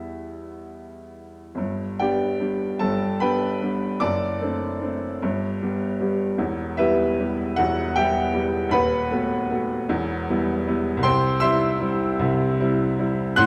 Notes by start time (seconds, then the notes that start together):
Already playing: E2 G3 B3 E4 E5
1.55 G1 G2
1.99 G3 B3 D4 G4 D5 G5
2.39 G3 B3 D4
2.79 G1 G2 A4 A5
3.20 G3 B3 D4 B4 G5 B5
3.62 G3 B3 D4
4.00 F#1 F#2 D5 A5 D6
4.41 A3 C4 D4
4.81 A3 C4 D4
5.22 G1 G2
5.62 G3 B3 G4
6.00 G3 B3 G4
6.38 E1 E2
6.77 G3 B3 E4 G4 B4 E5
7.19 G3 B3 G4
7.56 E1 E2 F#4 F#5
7.96 G3 B3 G4 E5 G5
8.34 G3 B3 G4
8.69 D#1 D#2 B4 F#5 B5
9.11 A3 B3 F#4
9.51 A3 B3 F#4
9.89 E1 E2
10.29 G3 B3 E4
10.67 G3 B3 E4
10.97 C2
11.03 C3 C5 G5 C6
11.40 G3 C4 E4 E5 C6 E6
11.80 G3 C4 E4
12.19 C2 C3
12.60 G3 C4 E4
12.99 G3 C4 E4
13.36 A1 A2 F#5 C6 F#6